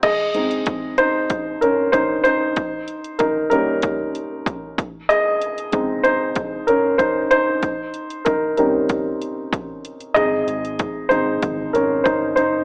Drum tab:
CC |x---------------|----------------|----------------|----------------|
HH |x-xxx-x-x-x-x-x-|x-xxx-x-x-x-x-x-|x-xxx-x-x-x-x-x-|x-xxx-x-x-x-x-xx|
BD |o---o---o---o---|o---o---o---o-o-|----o---o---o---|o---o---o---o---|

CC |----------------|
HH |x-xxx-x-x-x-x-x-|
BD |o---o---o---o---|